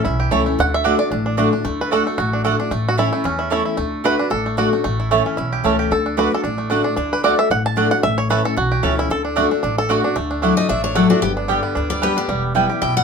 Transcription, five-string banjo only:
Already playing: C#4
0.05 E4
0.20 G4
0.31 E4
0.46 A3
0.60 F#5
0.74 E5
0.85 D4
0.99 D5
1.12 D4
1.26 D4
1.38 D4
1.53 D4
1.65 A3
1.81 B4
1.93 A4
2.07 A3
2.18 F#4
2.33 D4
2.45 A4
2.60 D4
2.71 A3
2.89 F#4
2.99 E4
3.13 A3
3.25 C#4
3.39 E4
3.52 E4
3.65 E4
3.77 A3
4.06 B4
4.19 D4
4.31 A4
4.46 A3
4.58 F#4
4.73 A3
4.84 A3
5.00 E4
5.11 A3
5.26 C#4
5.37 E4
5.53 G4
5.64 C#4
5.79 G4
5.92 A4
6.06 D4
6.19 B4
6.34 A4
6.44 D4
6.58 A3
6.70 D4
6.84 D4
6.96 D4
7.13 B4
7.24 D5
7.39 E5
7.51 F#5
7.66 A5
7.77 D4
7.91 F#5
8.03 E5
8.18 C#5
8.30 B4
8.45 A4
8.57 F#4
8.72 G4
8.83 C#4
8.99 E4
9.11 A4
9.25 D4
9.36 A3
9.51 D4
9.63 D4
9.78 A4
9.91 F#4
10.04 D4
10.16 A3
10.31 D4
10.42 D4
10.57 A3
10.69 D4
10.84 D4
10.95 A3
11.11 D4
11.22 B3
11.37 D4
11.48 G3
11.63 B3
11.75 D4
11.90 G3
12.02 B3
12.17 D4
12.29 G3
12.55 G3
12.70 G4
12.82 E4
12.97 G3

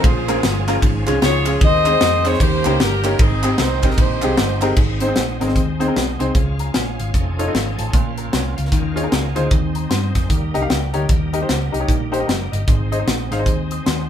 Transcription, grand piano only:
0.04 A#2
0.28 A#3 C#4 F4 G#4 A#4
0.68 A#3 C#4 F4 G#4 A#4
0.82 G#2
1.07 G#3 C#4 F4 G#4 C#5
1.47 G#3 C#4 F4 G#4 C#5
1.62 D#3
1.86 G#3 C4 D#4 G#4 C5
2.26 G#3 C4 D#4 G#4 C5
2.65 A#3 C#4 D#4 G4 A#4
3.04 A#3 C#4 D#4 G4 C#5
3.20 G#2
3.43 G#3 C4 D#4 G4 G#4
3.84 G#3 C4 D#4 G4 G#4
4.23 G#3 C4 D#4 G4 G#4
4.62 G#3 C4 D#4 G4 A#4
4.77 G#2
5.01 C4 D#4 G#4 C5
5.07 C4 D#4 G#4 C5
5.40 C4 D#4 G#4 A#4
5.47 C4 D#4 G#4 C5
5.80 C4 D#4 G#4 C5
5.87 C4 D#4 G#4 A#4
6.19 C4 D#4 G#4 C5
6.35 C#3
6.60 A#5
6.75 G#5
7.00 F5
7.39 D#4 F4 A4 C#5
7.47 D#4 F4 A4 D#5
7.79 A5
7.94 A#2
8.18 A#4
8.32 C#5
8.57 F5
8.72 D#3
8.96 D#4 F4 G#4 C#5
9.03 D#4 F4 G#4 A#4
9.35 D#4 F4 G#4 C5
9.51 D#3
9.76 A#5
9.89 C6
10.15 D#6
10.29 D#3
10.54 D#4 G4 A#4 D#5
10.61 D#4 G4 A#4 F5
10.69 G5
10.93 D#4 G4 A#4 C#5 A#5
11.33 D#4 G4 A#4 D#5
11.41 D#4 G4 A#4 C5
11.72 D#4 G4 A#4 D#5
11.80 D#4 G4 A#4 C#5
11.87 D#3
12.12 D#4 G4 A#4 C5
12.19 D#4 G4 A#4 D#5
12.27 A#5
12.52 D#5
12.67 G#2
12.92 D#4 G#4 C5 D#5
12.99 D#4 G#4 C5 D#5
13.31 D#4 G#4 C5 F5
13.39 D#4 G#4 C5 D#5
13.72 D#6
13.86 C6

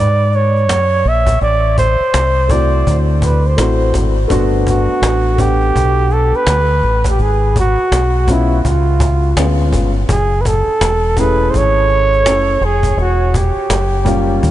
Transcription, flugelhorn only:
Already playing: D5
0.35 C#5
1.08 E5
1.42 D5
1.78 C5
2.51 D5
3.24 B4
3.47 C5
4.68 F#4
5.41 G4
6.13 A4
6.36 B4
7.09 G4
7.22 G#4
7.59 F#4
8.32 E4
8.61 E4
8.67 F4
10.11 G#4
10.41 B4
10.47 A4
11.19 B4
11.51 C5
11.57 C#5
12.65 G#4
13.01 F#4
13.37 G4

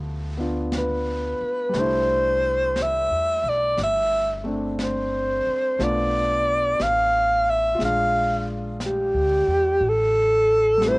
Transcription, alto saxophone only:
0.78 B4
1.79 C5
2.82 E5
3.49 D5
3.83 E5
4.84 C5
5.83 D5
6.82 F5
7.50 E5
7.85 F5
8.86 G4
9.89 A4
10.88 C5

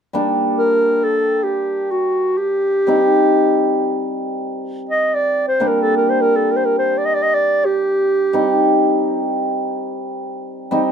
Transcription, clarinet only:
0.58 A#4
1.04 A4
1.43 G4
1.91 F#4
2.37 G4
4.89 D#5
5.15 D5
5.48 C5
5.68 A#4
5.83 A4
5.97 A#4
6.09 C5
6.21 A#4
6.36 A4
6.52 A#4
6.56 C5
6.65 A#4
6.79 C5
6.98 D5
7.05 D#5
7.14 D5
7.23 D#5
7.34 D5
7.65 G4

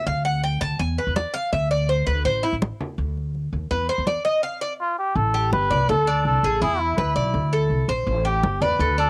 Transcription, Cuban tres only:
0.07 F5
0.25 F#5
0.43 G5
0.61 A5
0.80 G#5
0.98 B4
1.16 D5
1.34 F5
1.53 E5
1.71 D5
1.89 C5
2.07 B4
2.25 C5
2.43 E4
3.71 B4
3.89 C5
4.07 D5
4.25 D#5
4.43 F5
4.61 D5
5.34 G4
5.71 D5
5.89 A4
6.07 D4
6.44 G#4
6.62 E4
6.98 B4
7.16 D5
7.53 A4
7.89 C5
8.25 G4
8.62 D5
8.80 A4
8.98 D4

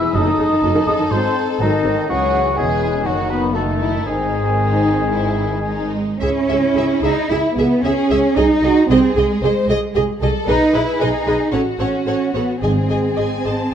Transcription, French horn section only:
Already playing: E4
0.14 D#4
0.88 D#4
1.12 C4
1.62 D#3
2.08 F#3
2.55 G#3
3.04 F#3
3.29 B3
3.53 A3
4.05 G#3

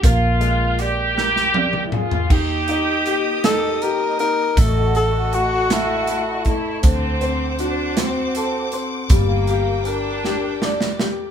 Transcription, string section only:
2.30 A#3 D#5 D#6
4.58 A4 C#6
6.84 C5 F#5 D6
9.10 A#4 G5

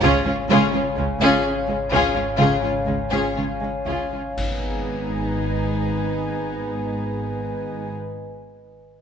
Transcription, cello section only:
0.01 C#2
0.25 C#2
0.49 C#2
0.73 C#2
0.97 C#2
1.20 C#2
1.68 C#2
1.91 C#2
2.15 C#2
2.38 C#2
2.63 C#2
2.86 C#2
3.11 C#2
3.35 C#2
3.61 C#2
3.86 C#2
4.12 C#2
4.36 G#2

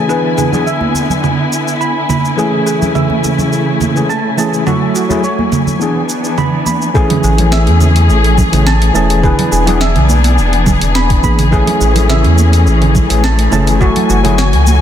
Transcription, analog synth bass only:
7.24 A1
7.67 E2
8.09 A1
8.53 A1
8.95 E1
9.52 E1
9.96 B1
10.38 E1
10.82 E1
11.24 A1
11.81 A1
12.25 E2
12.67 A1
13.11 A1
13.52 F#1
14.10 F#1
14.53 C#2

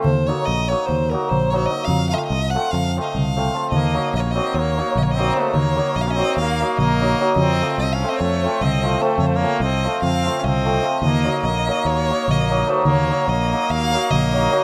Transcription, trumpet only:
3.75 A#3
4.16 A#3
4.24 A#3
4.33 C4
4.59 A#3
5.00 A#3
5.06 A#3
5.15 C4
5.40 A3
5.58 A#3
6.00 A#3
6.08 C#4
6.17 C4
6.41 A#3
6.81 A#3
7.39 C4
7.81 C4
7.95 C#4
8.10 C4
8.22 A3
8.64 C4
9.03 A3
9.21 A3
9.27 A3
9.36 A#3
9.64 C4
10.04 C4
10.40 C#4
10.48 C4
11.05 A#3
11.47 A#3
11.87 A#3
12.30 A#3
12.68 A3
12.86 A#3
13.29 A#3
13.72 A#3
14.12 A#3

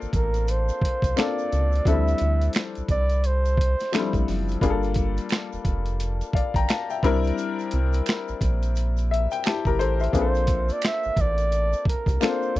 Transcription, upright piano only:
Already playing: A#3 C4 D4 F4 A4
1.16 A#3 C4 D4 F4 A4
1.86 F3 C4 D4 E4 A4
1.93 G3
3.92 F3 C4 D4 E4 A4
3.98 G3
4.61 G3 A#3 D4 F4 G#4
4.70 A4
6.35 D5 F5
6.56 G5 A#5
6.69 F5 A5
6.90 E5 G5
7.03 G3 C4 D4 E4 A#4
9.11 E5
9.32 G5
9.46 E4 G4 A5
9.67 G4 A#4 A#5
9.79 A4 C5
10.01 C5 E5
10.13 A#3 C4 D4 F4 G#4
10.21 A4
12.21 A#3 C4 D4 F4 A4

